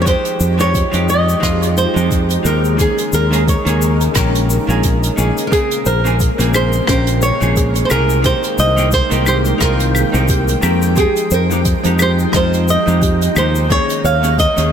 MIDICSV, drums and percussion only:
0, 0, Header, 1, 2, 480
1, 0, Start_track
1, 0, Tempo, 681818
1, 48, Time_signature, 4, 2, 24, 8
1, 10365, End_track
2, 0, Start_track
2, 0, Title_t, "Drums"
2, 45, Note_on_c, 9, 82, 52
2, 46, Note_on_c, 9, 36, 93
2, 46, Note_on_c, 9, 42, 70
2, 115, Note_off_c, 9, 82, 0
2, 117, Note_off_c, 9, 36, 0
2, 117, Note_off_c, 9, 42, 0
2, 175, Note_on_c, 9, 42, 54
2, 181, Note_on_c, 9, 82, 37
2, 246, Note_off_c, 9, 42, 0
2, 251, Note_off_c, 9, 82, 0
2, 283, Note_on_c, 9, 82, 81
2, 353, Note_off_c, 9, 82, 0
2, 420, Note_on_c, 9, 82, 48
2, 490, Note_off_c, 9, 82, 0
2, 526, Note_on_c, 9, 36, 91
2, 526, Note_on_c, 9, 42, 75
2, 527, Note_on_c, 9, 82, 58
2, 596, Note_off_c, 9, 36, 0
2, 597, Note_off_c, 9, 42, 0
2, 598, Note_off_c, 9, 82, 0
2, 657, Note_on_c, 9, 82, 42
2, 659, Note_on_c, 9, 42, 56
2, 727, Note_off_c, 9, 82, 0
2, 729, Note_off_c, 9, 42, 0
2, 768, Note_on_c, 9, 82, 78
2, 838, Note_off_c, 9, 82, 0
2, 908, Note_on_c, 9, 82, 47
2, 979, Note_off_c, 9, 82, 0
2, 1006, Note_on_c, 9, 36, 93
2, 1006, Note_on_c, 9, 42, 76
2, 1007, Note_on_c, 9, 37, 71
2, 1009, Note_on_c, 9, 82, 54
2, 1076, Note_off_c, 9, 36, 0
2, 1077, Note_off_c, 9, 42, 0
2, 1078, Note_off_c, 9, 37, 0
2, 1080, Note_off_c, 9, 82, 0
2, 1143, Note_on_c, 9, 42, 62
2, 1146, Note_on_c, 9, 82, 43
2, 1213, Note_off_c, 9, 42, 0
2, 1216, Note_off_c, 9, 82, 0
2, 1248, Note_on_c, 9, 82, 74
2, 1319, Note_off_c, 9, 82, 0
2, 1387, Note_on_c, 9, 82, 51
2, 1458, Note_off_c, 9, 82, 0
2, 1486, Note_on_c, 9, 36, 96
2, 1488, Note_on_c, 9, 42, 71
2, 1488, Note_on_c, 9, 82, 58
2, 1557, Note_off_c, 9, 36, 0
2, 1558, Note_off_c, 9, 42, 0
2, 1558, Note_off_c, 9, 82, 0
2, 1621, Note_on_c, 9, 42, 57
2, 1621, Note_on_c, 9, 82, 38
2, 1691, Note_off_c, 9, 42, 0
2, 1691, Note_off_c, 9, 82, 0
2, 1728, Note_on_c, 9, 82, 80
2, 1799, Note_off_c, 9, 82, 0
2, 1863, Note_on_c, 9, 82, 44
2, 1933, Note_off_c, 9, 82, 0
2, 1965, Note_on_c, 9, 42, 73
2, 1966, Note_on_c, 9, 36, 94
2, 1966, Note_on_c, 9, 82, 58
2, 2035, Note_off_c, 9, 42, 0
2, 2036, Note_off_c, 9, 82, 0
2, 2037, Note_off_c, 9, 36, 0
2, 2099, Note_on_c, 9, 42, 56
2, 2100, Note_on_c, 9, 82, 38
2, 2170, Note_off_c, 9, 42, 0
2, 2171, Note_off_c, 9, 82, 0
2, 2203, Note_on_c, 9, 82, 80
2, 2273, Note_off_c, 9, 82, 0
2, 2342, Note_on_c, 9, 42, 51
2, 2345, Note_on_c, 9, 82, 54
2, 2413, Note_off_c, 9, 42, 0
2, 2415, Note_off_c, 9, 82, 0
2, 2447, Note_on_c, 9, 36, 99
2, 2449, Note_on_c, 9, 42, 80
2, 2453, Note_on_c, 9, 82, 53
2, 2518, Note_off_c, 9, 36, 0
2, 2519, Note_off_c, 9, 42, 0
2, 2523, Note_off_c, 9, 82, 0
2, 2580, Note_on_c, 9, 42, 64
2, 2587, Note_on_c, 9, 82, 41
2, 2650, Note_off_c, 9, 42, 0
2, 2657, Note_off_c, 9, 82, 0
2, 2688, Note_on_c, 9, 82, 85
2, 2758, Note_off_c, 9, 82, 0
2, 2821, Note_on_c, 9, 42, 53
2, 2823, Note_on_c, 9, 82, 48
2, 2892, Note_off_c, 9, 42, 0
2, 2894, Note_off_c, 9, 82, 0
2, 2919, Note_on_c, 9, 42, 86
2, 2925, Note_on_c, 9, 37, 90
2, 2927, Note_on_c, 9, 82, 68
2, 2928, Note_on_c, 9, 36, 99
2, 2989, Note_off_c, 9, 42, 0
2, 2996, Note_off_c, 9, 37, 0
2, 2997, Note_off_c, 9, 82, 0
2, 2998, Note_off_c, 9, 36, 0
2, 3063, Note_on_c, 9, 42, 62
2, 3065, Note_on_c, 9, 82, 38
2, 3134, Note_off_c, 9, 42, 0
2, 3136, Note_off_c, 9, 82, 0
2, 3168, Note_on_c, 9, 82, 78
2, 3238, Note_off_c, 9, 82, 0
2, 3306, Note_on_c, 9, 82, 45
2, 3377, Note_off_c, 9, 82, 0
2, 3402, Note_on_c, 9, 42, 80
2, 3405, Note_on_c, 9, 82, 56
2, 3408, Note_on_c, 9, 36, 96
2, 3473, Note_off_c, 9, 42, 0
2, 3476, Note_off_c, 9, 82, 0
2, 3478, Note_off_c, 9, 36, 0
2, 3543, Note_on_c, 9, 42, 54
2, 3545, Note_on_c, 9, 82, 39
2, 3614, Note_off_c, 9, 42, 0
2, 3615, Note_off_c, 9, 82, 0
2, 3648, Note_on_c, 9, 82, 85
2, 3719, Note_off_c, 9, 82, 0
2, 3785, Note_on_c, 9, 82, 46
2, 3789, Note_on_c, 9, 42, 50
2, 3855, Note_off_c, 9, 82, 0
2, 3859, Note_off_c, 9, 42, 0
2, 3888, Note_on_c, 9, 36, 105
2, 3889, Note_on_c, 9, 82, 60
2, 3890, Note_on_c, 9, 42, 84
2, 3958, Note_off_c, 9, 36, 0
2, 3959, Note_off_c, 9, 82, 0
2, 3961, Note_off_c, 9, 42, 0
2, 4021, Note_on_c, 9, 42, 59
2, 4024, Note_on_c, 9, 82, 42
2, 4091, Note_off_c, 9, 42, 0
2, 4094, Note_off_c, 9, 82, 0
2, 4124, Note_on_c, 9, 82, 86
2, 4195, Note_off_c, 9, 82, 0
2, 4264, Note_on_c, 9, 82, 53
2, 4334, Note_off_c, 9, 82, 0
2, 4364, Note_on_c, 9, 82, 58
2, 4367, Note_on_c, 9, 36, 97
2, 4371, Note_on_c, 9, 42, 84
2, 4434, Note_off_c, 9, 82, 0
2, 4438, Note_off_c, 9, 36, 0
2, 4441, Note_off_c, 9, 42, 0
2, 4501, Note_on_c, 9, 82, 42
2, 4506, Note_on_c, 9, 42, 64
2, 4572, Note_off_c, 9, 82, 0
2, 4576, Note_off_c, 9, 42, 0
2, 4605, Note_on_c, 9, 82, 97
2, 4607, Note_on_c, 9, 75, 79
2, 4675, Note_off_c, 9, 82, 0
2, 4678, Note_off_c, 9, 75, 0
2, 4736, Note_on_c, 9, 82, 54
2, 4806, Note_off_c, 9, 82, 0
2, 4840, Note_on_c, 9, 37, 90
2, 4848, Note_on_c, 9, 36, 106
2, 4849, Note_on_c, 9, 42, 84
2, 4849, Note_on_c, 9, 82, 57
2, 4910, Note_off_c, 9, 37, 0
2, 4918, Note_off_c, 9, 36, 0
2, 4919, Note_off_c, 9, 42, 0
2, 4919, Note_off_c, 9, 82, 0
2, 4976, Note_on_c, 9, 42, 64
2, 4981, Note_on_c, 9, 82, 43
2, 5046, Note_off_c, 9, 42, 0
2, 5051, Note_off_c, 9, 82, 0
2, 5083, Note_on_c, 9, 82, 87
2, 5153, Note_off_c, 9, 82, 0
2, 5221, Note_on_c, 9, 82, 46
2, 5291, Note_off_c, 9, 82, 0
2, 5325, Note_on_c, 9, 82, 54
2, 5327, Note_on_c, 9, 36, 107
2, 5328, Note_on_c, 9, 42, 82
2, 5395, Note_off_c, 9, 82, 0
2, 5397, Note_off_c, 9, 36, 0
2, 5399, Note_off_c, 9, 42, 0
2, 5459, Note_on_c, 9, 42, 57
2, 5461, Note_on_c, 9, 82, 40
2, 5529, Note_off_c, 9, 42, 0
2, 5531, Note_off_c, 9, 82, 0
2, 5563, Note_on_c, 9, 75, 70
2, 5564, Note_on_c, 9, 82, 98
2, 5634, Note_off_c, 9, 75, 0
2, 5635, Note_off_c, 9, 82, 0
2, 5699, Note_on_c, 9, 82, 54
2, 5769, Note_off_c, 9, 82, 0
2, 5801, Note_on_c, 9, 42, 80
2, 5805, Note_on_c, 9, 82, 54
2, 5806, Note_on_c, 9, 36, 107
2, 5871, Note_off_c, 9, 42, 0
2, 5876, Note_off_c, 9, 82, 0
2, 5877, Note_off_c, 9, 36, 0
2, 5938, Note_on_c, 9, 82, 46
2, 5940, Note_on_c, 9, 42, 53
2, 6009, Note_off_c, 9, 82, 0
2, 6010, Note_off_c, 9, 42, 0
2, 6043, Note_on_c, 9, 82, 92
2, 6113, Note_off_c, 9, 82, 0
2, 6179, Note_on_c, 9, 82, 50
2, 6249, Note_off_c, 9, 82, 0
2, 6277, Note_on_c, 9, 82, 65
2, 6286, Note_on_c, 9, 36, 106
2, 6287, Note_on_c, 9, 42, 71
2, 6347, Note_off_c, 9, 82, 0
2, 6357, Note_off_c, 9, 36, 0
2, 6357, Note_off_c, 9, 42, 0
2, 6414, Note_on_c, 9, 42, 58
2, 6416, Note_on_c, 9, 82, 44
2, 6485, Note_off_c, 9, 42, 0
2, 6487, Note_off_c, 9, 82, 0
2, 6522, Note_on_c, 9, 75, 71
2, 6523, Note_on_c, 9, 82, 85
2, 6592, Note_off_c, 9, 75, 0
2, 6593, Note_off_c, 9, 82, 0
2, 6654, Note_on_c, 9, 82, 55
2, 6724, Note_off_c, 9, 82, 0
2, 6760, Note_on_c, 9, 42, 86
2, 6764, Note_on_c, 9, 37, 81
2, 6765, Note_on_c, 9, 36, 104
2, 6765, Note_on_c, 9, 82, 64
2, 6831, Note_off_c, 9, 42, 0
2, 6835, Note_off_c, 9, 37, 0
2, 6835, Note_off_c, 9, 82, 0
2, 6836, Note_off_c, 9, 36, 0
2, 6899, Note_on_c, 9, 42, 62
2, 6899, Note_on_c, 9, 82, 45
2, 6969, Note_off_c, 9, 82, 0
2, 6970, Note_off_c, 9, 42, 0
2, 7003, Note_on_c, 9, 75, 76
2, 7009, Note_on_c, 9, 82, 87
2, 7073, Note_off_c, 9, 75, 0
2, 7080, Note_off_c, 9, 82, 0
2, 7140, Note_on_c, 9, 82, 47
2, 7211, Note_off_c, 9, 82, 0
2, 7239, Note_on_c, 9, 82, 62
2, 7245, Note_on_c, 9, 36, 106
2, 7247, Note_on_c, 9, 42, 80
2, 7309, Note_off_c, 9, 82, 0
2, 7315, Note_off_c, 9, 36, 0
2, 7317, Note_off_c, 9, 42, 0
2, 7377, Note_on_c, 9, 82, 45
2, 7384, Note_on_c, 9, 42, 62
2, 7448, Note_off_c, 9, 82, 0
2, 7455, Note_off_c, 9, 42, 0
2, 7481, Note_on_c, 9, 82, 93
2, 7484, Note_on_c, 9, 75, 73
2, 7552, Note_off_c, 9, 82, 0
2, 7555, Note_off_c, 9, 75, 0
2, 7617, Note_on_c, 9, 82, 50
2, 7688, Note_off_c, 9, 82, 0
2, 7717, Note_on_c, 9, 82, 64
2, 7725, Note_on_c, 9, 36, 104
2, 7726, Note_on_c, 9, 42, 75
2, 7787, Note_off_c, 9, 82, 0
2, 7795, Note_off_c, 9, 36, 0
2, 7796, Note_off_c, 9, 42, 0
2, 7860, Note_on_c, 9, 42, 56
2, 7860, Note_on_c, 9, 82, 39
2, 7930, Note_off_c, 9, 42, 0
2, 7930, Note_off_c, 9, 82, 0
2, 7962, Note_on_c, 9, 82, 92
2, 8033, Note_off_c, 9, 82, 0
2, 8104, Note_on_c, 9, 82, 55
2, 8174, Note_off_c, 9, 82, 0
2, 8201, Note_on_c, 9, 42, 75
2, 8204, Note_on_c, 9, 82, 59
2, 8206, Note_on_c, 9, 36, 101
2, 8272, Note_off_c, 9, 42, 0
2, 8275, Note_off_c, 9, 82, 0
2, 8276, Note_off_c, 9, 36, 0
2, 8337, Note_on_c, 9, 42, 55
2, 8341, Note_on_c, 9, 82, 42
2, 8407, Note_off_c, 9, 42, 0
2, 8411, Note_off_c, 9, 82, 0
2, 8441, Note_on_c, 9, 82, 89
2, 8443, Note_on_c, 9, 75, 79
2, 8512, Note_off_c, 9, 82, 0
2, 8513, Note_off_c, 9, 75, 0
2, 8582, Note_on_c, 9, 82, 53
2, 8653, Note_off_c, 9, 82, 0
2, 8681, Note_on_c, 9, 37, 78
2, 8684, Note_on_c, 9, 82, 60
2, 8686, Note_on_c, 9, 36, 112
2, 8688, Note_on_c, 9, 42, 71
2, 8751, Note_off_c, 9, 37, 0
2, 8754, Note_off_c, 9, 82, 0
2, 8757, Note_off_c, 9, 36, 0
2, 8758, Note_off_c, 9, 42, 0
2, 8825, Note_on_c, 9, 82, 37
2, 8826, Note_on_c, 9, 42, 60
2, 8895, Note_off_c, 9, 82, 0
2, 8896, Note_off_c, 9, 42, 0
2, 8930, Note_on_c, 9, 82, 94
2, 9000, Note_off_c, 9, 82, 0
2, 9066, Note_on_c, 9, 82, 48
2, 9136, Note_off_c, 9, 82, 0
2, 9166, Note_on_c, 9, 82, 61
2, 9167, Note_on_c, 9, 36, 101
2, 9169, Note_on_c, 9, 42, 83
2, 9237, Note_off_c, 9, 36, 0
2, 9237, Note_off_c, 9, 82, 0
2, 9240, Note_off_c, 9, 42, 0
2, 9306, Note_on_c, 9, 42, 61
2, 9307, Note_on_c, 9, 82, 42
2, 9376, Note_off_c, 9, 42, 0
2, 9377, Note_off_c, 9, 82, 0
2, 9408, Note_on_c, 9, 75, 81
2, 9408, Note_on_c, 9, 82, 77
2, 9478, Note_off_c, 9, 82, 0
2, 9479, Note_off_c, 9, 75, 0
2, 9541, Note_on_c, 9, 82, 51
2, 9611, Note_off_c, 9, 82, 0
2, 9646, Note_on_c, 9, 42, 65
2, 9647, Note_on_c, 9, 36, 105
2, 9650, Note_on_c, 9, 82, 61
2, 9716, Note_off_c, 9, 42, 0
2, 9718, Note_off_c, 9, 36, 0
2, 9720, Note_off_c, 9, 82, 0
2, 9783, Note_on_c, 9, 82, 44
2, 9785, Note_on_c, 9, 42, 61
2, 9854, Note_off_c, 9, 82, 0
2, 9855, Note_off_c, 9, 42, 0
2, 9893, Note_on_c, 9, 82, 91
2, 9963, Note_off_c, 9, 82, 0
2, 10022, Note_on_c, 9, 42, 48
2, 10024, Note_on_c, 9, 82, 53
2, 10092, Note_off_c, 9, 42, 0
2, 10094, Note_off_c, 9, 82, 0
2, 10127, Note_on_c, 9, 36, 101
2, 10128, Note_on_c, 9, 42, 74
2, 10131, Note_on_c, 9, 82, 61
2, 10197, Note_off_c, 9, 36, 0
2, 10198, Note_off_c, 9, 42, 0
2, 10202, Note_off_c, 9, 82, 0
2, 10260, Note_on_c, 9, 82, 47
2, 10262, Note_on_c, 9, 42, 58
2, 10331, Note_off_c, 9, 82, 0
2, 10333, Note_off_c, 9, 42, 0
2, 10365, End_track
0, 0, End_of_file